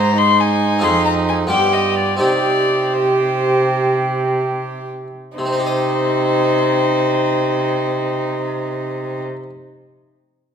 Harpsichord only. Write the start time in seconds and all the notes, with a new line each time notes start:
Already playing: G#2 G#3 C4 D#4 G#4
0.79 C4 F4 G#4
0.83 F2
1.47 B3 F4 G4
1.51 G2
2.17 C4 D#4 G4
2.21 C3
5.38 C3
5.46 C4
5.53 D#4
5.59 G4
5.66 D#5